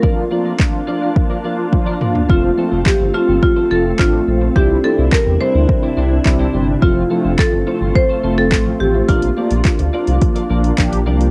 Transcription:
<<
  \new Staff \with { instrumentName = "Clean electric guitar" } { \time 4/4 \key f \major \tempo 4 = 106 <f' bes' d''>16 r16 <f' bes' d''>16 <f' bes' d''>16 r8 <f' bes' d''>16 <f' bes' d''>16 r16 <f' bes' d''>16 <f' bes' d''>16 r8 <f' bes' d''>16 <f' bes' d''>16 r16 | <f' a' c''>16 r16 <f' a' c''>16 <f' a' c''>16 r8 <f' a' c''>16 <f' a' c''>16 r16 <f' a' c''>16 <f' a' c''>16 r4 r16 | <d' e' c''>16 r16 <d' e' c''>16 <d' e' c''>16 r8 <d' e' c''>16 <d' e' c''>16 r16 <d' e' c''>16 <d' e' c''>16 r8 <d' e' c''>16 <d' e' c''>16 r16 | <f' a' c''>16 r16 <f' a' c''>16 <f' a' c''>16 r8 <f' a' c''>16 <f' a' c''>16 r16 <f' a' c''>16 <f' a' c''>16 r4 r16 |
<f' bes' d''>16 r16 <f' bes' d''>16 <f' bes' d''>16 r8 <f' bes' d''>16 <f' bes' d''>16 r16 <f' bes' d''>16 <f' bes' d''>16 r8. <f' bes' d''>16 r16 | }
  \new Staff \with { instrumentName = "Marimba" } { \time 4/4 \key f \major bes'2~ bes'8. r4 r16 | f'4 g'8 f'8 f'8 a'8 f'4 | g'8 a'8 bes'8 c''2 r8 | f'4 a'4 c''8. a'8. g'8 |
f'2 r2 | }
  \new Staff \with { instrumentName = "Ambient pad" } { \time 4/4 \key f \major << { f'1~ | f'1 | <c e'>1 | f'1~ |
f'1 | } \\ { <bes d'>1 | <a c'>1 | d'1 | a1 |
<bes d'>1 | } >> }
  \new Staff \with { instrumentName = "Analog polysynth" } { \time 4/4 \key f \major <f bes d' f'>8 <f bes d' f'>8 <f bes d' f'>8 <f bes d' f'>8 <f bes f'>8 <f bes d' f'>8 <f bes d' f'>8 <f bes d' f'>8 | <f a c' f'>8 <f a c' f'>8 <f a c' f'>8 <f a c' f'>8 <f a c' f'>8 <f a c' f'>8 <f a c' d'>8 <f a c' f'>8 | <g c' d' e'>8 <g c' d' e'>8 <g c' d'>8 <g c' d' e'>8 <g c' d' e'>8 <g c' d' e'>8 <g c' d' e'>8 <g c' d' g'>8 | <f a c' f'>8 <f a c' f'>8 <f a c' f'>8 <f a c' f'>8 <f a c' f'>8 <f a c' f'>8 <f a c' f'>8 <f a c' f'>8 |
<f bes d' f'>8 <f bes d' f'>8 <f bes d' f'>8 <f bes d' f'>8 <f bes d' f'>8 <f bes d' f'>8 <f bes d' g'>8 <f bes d' g'>8 | }
  \new Staff \with { instrumentName = "Analog synth bass" } { \clef bass \time 4/4 \key f \major r1 | f,,8 r16 f,,16 r16 g,,16 r16 g,,16 r8 f,,8 a,,8 bes,,8 | c,8 r16 c,16 r16 e,16 r16 d,16 r8 c,8 c,8 g,,8 | f,,8 r16 f,,16 r16 g,,16 r16 g,,16 r8 f,,8 a,,8 a,,8 |
bes,,8 r16 bes,,16 r16 d,16 r16 c,16 r8 bes,,8 bes,,8 c,8 | }
  \new DrumStaff \with { instrumentName = "Drums" } \drummode { \time 4/4 bd4 <hc bd>4 bd4 <bd tommh>8 toml16 tomfh16 | bd4 <hc bd>4 bd4 <hc bd>4 | bd4 <hc bd>4 bd4 <hc bd>4 | bd4 <hc bd>4 bd4 <hc bd>4 |
<hh bd>16 hh8 hh16 <hc hh bd>16 hh8 hh16 <hh bd>16 hh8 hh16 <hc hh bd>16 hh8 hh16 | }
>>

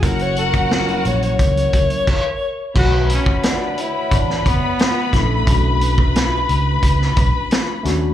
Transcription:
<<
  \new Staff \with { instrumentName = "String section" } { \time 4/4 \key ges \lydian \tempo 4 = 88 <ges' ges''>2~ <ges' ges''>8 r4. | \key b \minor <b' b''>1~ | <b' b''>1 | }
  \new Staff \with { instrumentName = "Vibraphone" } { \time 4/4 \key ges \lydian ges'8 r4. bes'8 fes''4. | \key b \minor b'16 e''16 fis''4 cis''16 e''4.~ e''16 r8 | r8 b'16 e''4.~ e''16 r4. | }
  \new Staff \with { instrumentName = "Alto saxophone" } { \time 4/4 \key ges \lydian bes'16 des''16 bes'4 des''16 des''2~ des''16 | \key b \minor fis'8 cis'8 d'8 e'8 d'8 b4 a8~ | a8 r2. r8 | }
  \new Staff \with { instrumentName = "Tine electric piano" } { \time 4/4 \key ges \lydian <ges bes des' fes'>8 r16 <ges bes des' ges'>16 r16 <ges g bes des' fes'>4. r4 r16 | \key b \minor <d a fis' cis''>4. r2 <a cis' d' e'>16 r16 | <a cis' d' fis'>4. r2 <a cis' d' fis'>16 r16 | }
  \new Staff \with { instrumentName = "Fingered electric bass" } { \clef bass \time 4/4 \key ges \lydian ges,,4. bes,,8 des,8 des,16 r4 r16 | \key b \minor b,,8. r4 r16 a,,8 fis,,16 r8. ais,,8 | b,,4. cis,8 cis,8 b,,16 r8. dis,8 | }
  \new DrumStaff \with { instrumentName = "Drums" } \drummode { \time 4/4 <hh bd>16 hh16 hh16 <hh bd>16 sn16 hh16 hh16 hh16 <hh bd>16 hh16 <hh bd>16 hh16 <cymc bd>4 | <cymc bd>8 hh16 bd16 <hh sn>8 hh8 <hh bd>16 sn16 <hh bd>8 <hh sn>8 <hh bd sn>8 | <hh bd>8 hh16 bd16 <hh sn>8 hh8 <hh bd>16 sn16 <hh bd>8 <hh sn>8 <hh sn>8 | }
>>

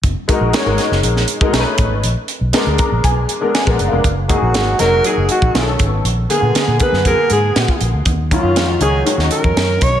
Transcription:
<<
  \new Staff \with { instrumentName = "Alto saxophone" } { \time 4/4 \key ges \major \tempo 4 = 120 r1 | r1 | r8 ges'4 bes'8 aes'8 ges'4 r8 | r8 aes'4 ces''8 bes'8 aes'4 r8 |
r8 f'4 aes'8 r8 bes'4 des''8 | }
  \new Staff \with { instrumentName = "Grand piano" } { \time 4/4 \key ges \major << { r1 | r4. bes''8 aes''4 \tuplet 3/2 { aes''8 ges''8 f''8 } | r1 | r1 |
r1 | } \\ { r8 <aes ees' ges' bes'>8 <aes ees' ges' des''>16 <aes ees' ges' bes'>4~ <aes ees' ges' bes'>16 r16 <aes ees' ges' bes'>16 <a cis' dis' bes' b'>8. r16 | r4 <aes ces' d' bes'>4. r16 <aes ces' d' bes'>8 <aes ces' d' bes'>8 <aes ces' d' bes'>16 | r8 <ges bes ees' aes'>8 <ges bes ees' aes'>8 <ges bes ees' ges'>8 <ges bes ees' aes'>4 <dis b cis' aes' a'>8. r16 | r8 <d bes ces' aes'>8 <d bes ces' aes'>8 <d bes ces' aes'>8 <d bes ces' aes'>4. r8 |
r8 <ees ges des' f'>8 <ees ges des' f'>8 <ees ges des' ees'>8 <ees ges des' ges'>4. r8 | } >> }
  \new Staff \with { instrumentName = "Fingered electric bass" } { \clef bass \time 4/4 \key ges \major ges,,16 r8 bes,,16 r16 aes,,16 r16 ges,,16 bes,,8 r8 b,,16 r16 a,,16 aes,,16 | bes,,16 r8 ces,16 r16 d,16 r16 bes,,16 ces,8 r8. bes,,16 ges,,16 f,,16 | ges,,8. bes,,16 r8 f,,8 r16 ges,,16 r16 bes,,16 b,,8 aes,,8 | bes,,8 r16 bes,16 r16 bes,16 r16 ges,8 r16 aes,8 bes,16 r16 bes,,16 d,16 |
ees,8. ges,16 f,8 des,8 r16 ees,16 r16 f,16 ges,8 ces,8 | }
  \new DrumStaff \with { instrumentName = "Drums" } \drummode { \time 4/4 <hh bd>8 <hh bd>8 <hh sn>8 <hh sn>16 sn16 hh16 sn16 hh16 bd16 <hh sn>8 <hh bd>8 | hh8 hh8 <hh sn>8 <hh bd>8 <hh bd>8 hh8 <hh sn>16 bd16 hh8 | <hh bd>8 <hh bd>8 <hh sn>8 <hh sn>8 hh8 hh16 bd16 <hh sn>8 <hh bd>8 | hh8 hh8 <hh sn>8 <hh bd>16 sn16 <hh bd>8 hh8 <hh sn>16 bd16 hh8 |
<hh bd>8 <hh bd>8 <hh sn>8 hh8 hh16 sn16 hh16 bd16 <hh sn>8 <hh bd>8 | }
>>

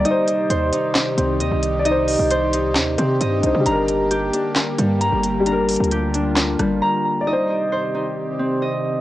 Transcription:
<<
  \new Staff \with { instrumentName = "Harp" } { \time 4/4 \key c \minor \tempo 4 = 133 ees''4 c''8 ees'4 c'8 ees''4 | ees''4 c''8 ees'4 c'8 ees''4 | bes''4 g'8 d'4 g8 bes''4 | bes''4 g'8 d'4 g8 bes''4 |
ees''4 c''8 ees'4 c'8 ees''4 | }
  \new Staff \with { instrumentName = "Grand piano" } { \time 4/4 \key c \minor <ees' c'' d''>1 | <ees' c'' d''>2.~ <ees' c'' d''>8 <d' ees' c''>8 | <g d' bes'>1 | <g d' bes'>1 |
<ees' c'' d''>1 | }
  \new Staff \with { instrumentName = "Analog synth pad" } { \clef bass \time 4/4 \key c \minor << { g'1~ | g'1~ | g'1 | f'1 |
g'1 | } \\ { <c ees ees'>1~ | <c ees ees'>1 | <d g bes>1~ | <d g bes>1 |
<c ees c'>1 | } >> }
  \new Staff \with { instrumentName = "808-style bass" } { \clef bass \time 4/4 \key c \minor r4 ees,8 r4 c,8 ees,16 c,8.~ | c,8. c,4~ c,16 ees,8 c8 g,8 c,16 c16 | g,,4. r4 g,8. g,,8.~ | g,,8. d,4.~ d,16 g,,8 r4 |
r1 | }
  \new DrumStaff \with { instrumentName = "Drums" } \drummode { \time 4/4 hh8 hh8 hh8 hh8 <hc hh sn>8 hh8 hh8 hh8 | hh8 hho8 hh8 hh8 <hc hh sn>8 hh8 hh8 hh8 | hh8 hh8 hh8 hh8 <hc hh sn>8 hh8 hh8 hh8 | \tuplet 3/2 { hh16 r16 r16 <hh hho>16 hh16 hh16 } hh8 hh8 <hc hh sn>8 <hh ss>8 r4 |
r4 r4 r4 r4 | }
>>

